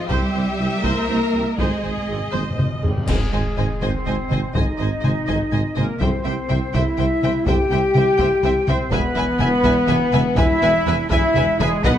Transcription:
Already playing: F4
0.09 C2 G3 G4 C5 E5, taiko
0.34 C2 C5
0.59 C2 E3 C4 G4
0.83 C2 A#3 A#4 C5, taiko
1.09 C2 C5
1.33 C2 E3 C4 G4
1.57 G#1 G#2 G#3 G#4 C5 D#5, taiko
1.66 G#2
1.82 G#1 G#2 C5
1.90 G#2
1.97 G#2
2.05 G#1 G#2 D#3 C4 G#4
2.09 G#1 G#2
2.20 G#2
2.27 G#2
2.32 G#1 G#2 C5, taiko high
2.43 G#2
2.50 G#2
2.58 G#1 G#2 C5, taiko mid
2.64 G#2
2.73 G#2
2.81 G#1 G#2 D#3 G3 C4 G4 G#4, taiko low
2.86 G#2 G3
2.97 G#2
3.06 G#1 G#2 G#3 G#4 C5 D#5 G#5, concert bass drum, taiko, crash
3.10 G#3
3.32 G#1 G#2 C5 D#5 G#5
3.57 G#1 G#2 C5 D#5 G#5, taiko mid
3.81 G#1 G#2 C4 C5 D#5 G#5, taiko
4.06 G#1 G#2 C5 D#5 G#5, taiko mid
4.30 G#1 G#2 C5 D#5 G#5, taiko mid
4.54 G#1 G#2 D#4 C5 D#5 G#5, taiko
4.78 G#1 G#2 C5 D#5 G#5
5.01 G#1 G#2 C5 D#5 G#5, taiko mid
5.27 G#1 G#2 C5 D#5 G#5, taiko
5.52 G#1 G#2 C5 D#5 G#5, taiko mid
5.76 G#1 G#2 A#3 A#4 C5 D#5 G#5, taiko mid
6.00 C2 C3 C4 C5 E5 G5, taiko
6.24 C2 C3 C5 E5 G5
6.49 C2 C3 C5 E5 G5, taiko mid
6.73 C2 C3 E4 C5 E5 G5, taiko
6.97 C2 C3 C5 E5 G5, taiko mid
7.23 C2 C3 C5 E5 G5, taiko mid
7.46 C2 C3 G4 C5 E5 G5, taiko
7.71 C2 C3 C5 E5 G5
7.95 C2 C3 C5 E5 G5, taiko mid
8.18 C2 C3 C5 E5 G5, taiko
8.43 C2 C3 C5 E5 G5, taiko mid
8.67 C2 C3 C4 C5 E5 G5, taiko mid
8.89 E1 E2 B3 B4 E5 G#5, taiko
8.94 B4
9.15 E1 E2 B4 E5 G#5
9.39 E1 E2 B4 E5 G#5, taiko mid
9.63 E1 E2 B4 E5 G#5, taiko
9.87 E1 E2 B4 E5 G#5, taiko mid
10.12 E1 E2 B4 E5 G#5, taiko mid
10.37 E1 E2 E4 B4 E5 G#5, taiko
10.62 E1 E2 B4 E5 G#5
10.86 E1 E2 B4 E5 G#5, taiko mid
11.09 E1 E2 E4 B4 E5 G#5, taiko
11.34 E1 E2 B4 E5 G#5, taiko mid
11.59 E1 E2 G#3 G#4 B4 E5 G#5, taiko mid
11.83 B1 B2 B3 B4 D#5 F#5, taiko

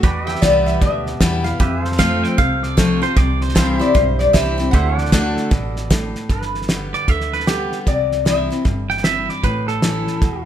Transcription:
0.03 E2 F#4 B4 D5 G5, kick, snare
0.24 G4 G5
0.28 E5, snare
0.35 snare
0.41 C2 E3 G3 B3 E4 D5, kick, snare, hi-hat pedal
0.66 E5, snare
0.81 D2 B2 E5, kick, snare
1.06 snare
1.20 E2 E3 G3 B3 E4, kick, snare, hi-hat pedal
1.44 B3 E4 F5, snare
1.60 F2 G4 B4 E5, kick, snare
1.81 C5 F5, snare
1.85 A4
1.92 snare
1.98 F3 A3 C4 F4 F5, kick, snare, hi-hat pedal
2.24 G5, snare
2.38 C2 C3 F5, kick, snare
2.63 D5, snare
2.77 F3 A3 C4 F4 C#5, kick, snare, hi-hat pedal
3.02 C4 F4 C5, snare
3.16 C2 C3 D5, kick, snare
3.41 C5, snare
3.49 snare
3.55 E3 G3 C4 E4 A4 C5 F5, kick, snare, hi-hat pedal
3.78 C4 E4 G4 D5 E5, snare
3.95 B1 G2 C5, kick, snare
4.19 D5, snare
4.33 C2 E3 G3 C4 E4 E5, kick, snare, hi-hat pedal
4.58 C4 E4, snare
4.71 D2 D3 G4 C5 F#5, kick, snare
4.75 E5
4.98 A4 D5 F#5, snare
5.05 snare
5.12 D3 A3 D4 F#4, kick, snare, hi-hat pedal
5.37 snare
5.51 A1 B2, kick, snare
5.76 snare
5.90 A2, kick, snare, hi-hat pedal
6.15 snare
6.29 G1 G2 B4, kick, snare
6.42 snare
6.54 snare
6.62 snare
6.68 D3 G3 B3 G4, snare, hi-hat pedal
6.93 D5, snare
7.08 D2 D3 E5, kick, snare
7.21 snare
7.33 B4, snare
7.37 A4, snare
7.47 D3 G3 B3 G4, snare, hi-hat pedal
7.72 snare
7.87 C2 C3 D5, kick, snare
8.12 snare
8.25 E3 G3 C4 E4 E5, snare, hi-hat pedal
8.50 C4 E4, snare
8.65 G1 G2, kick, snare
8.90 G5, snare
8.97 snare
9.04 E3 G3 C4 E4 E5, snare, hi-hat pedal
9.29 D5, snare
9.43 A1 A2 B4, kick, snare
9.68 A4, snare
9.82 E3 A3 C#4 E4, snare, hi-hat pedal
10.07 snare
10.22 E2 B2, kick, snare

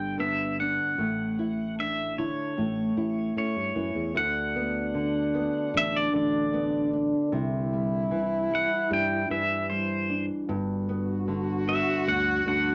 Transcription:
Already playing: G1 G2 D3 B3 D4 G4 G5
0.18 D3 B3 E5
0.60 D4 F#5
0.98 A1 A2 A3
1.39 E4
1.79 D4 E5
2.18 D3 E4 C#5
2.57 A1 A2 A3
2.97 A1 E4
3.36 A2 C#4 C#5
3.56 G2
3.75 F#2 E3 E4
3.95 E2
4.15 D2 D4 F#5
4.56 B3
4.94 D3
5.34 B3
5.74 A1 D4 E5
5.96 D5
6.13 A1 D3
6.53 B3
6.93 D4
7.32 C2 C3 E4
7.73 G3
8.11 E3
8.51 G3
8.55 F#5
8.91 G2 D4 G5
9.30 G2 E3 E5
9.70 G3 C5
10.10 D4
10.48 G1 G2 F#4
10.89 B3
11.28 D3
11.67 B3 E5
12.08 D2 D4 F#5
12.46 D2 D3 F#5

